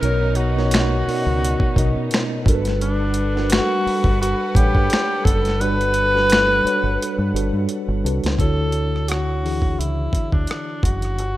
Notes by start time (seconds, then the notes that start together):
Already playing: B2 B3 C#4 D#4 B4 D5 D#5
0.01 B1 B2 B3 D#4 A#4 C#5, closed hi-hat
0.35 F#4, closed hi-hat
0.57 B2 B3 D#4 A#4 C#5, snare
0.71 finger snap, snare, closed hi-hat
1.07 B2 B3 D#4 A#4 D5, muted fingered electric bass stroke, open hi-hat
1.16 D#5
1.26 C#2
1.45 closed hi-hat
1.60 kick
1.76 B1 B2 B3 D#4 A#4 D#5, kick, closed hi-hat
1.96 B2
2.11 finger snap, snare, closed hi-hat
2.46 G1 G3 D4 F#4 A4 A#4 B4 F#5, kick, closed hi-hat
2.55 B4
2.65 snare, closed hi-hat
2.81 D4, closed hi-hat
3.14 closed hi-hat
3.36 G3 D4 F#4 A4 A#4, snare
3.44 B4
3.50 F#4, finger snap, snare, closed hi-hat
3.87 muted fingered electric bass stroke, open hi-hat
4.04 G1, kick
4.21 F#4, closed hi-hat
4.55 A1 G3 D4 G4 A4 C#5 F#5, kick, closed hi-hat
4.75 G2, kick
4.90 finger snap, snare, closed hi-hat
5.25 F#1 A4, kick, closed hi-hat
5.45 snare, closed hi-hat
5.60 G1 G3 D4 F#4 A4 B4, closed hi-hat
5.81 closed hi-hat
5.94 closed hi-hat
6.14 G3 D4 F#4 A4 B4, snare
6.30 finger snap, snare, closed hi-hat
6.64 G3 D4 F#4 A4 C#5, muted fingered electric bass stroke, closed hi-hat
6.84 G1
7.02 closed hi-hat
7.19 G2
7.34 G1 G3 D4 F#4 A4 B4, closed hi-hat
7.53 G2
7.69 closed hi-hat
7.88 G1
8.04 C2 G3 D4 F#4 A4 B4, closed hi-hat
8.24 C#2, snare, closed hi-hat
8.39 D2 D3 D4 E4 F#4 A4 C#5, kick, closed hi-hat
8.72 closed hi-hat
8.96 cross-stick
9.08 F#4, cross-stick, closed hi-hat
9.44 E3 D4 E4 F#4 G#4, open hi-hat
9.62 kick
9.79 C#2 E4, closed hi-hat
10.13 kick, closed hi-hat
10.32 D2 D4, kick
10.47 cross-stick, closed hi-hat
10.83 F#1 F#4, kick, closed hi-hat
11.02 cross-stick, closed hi-hat
11.19 G1, closed hi-hat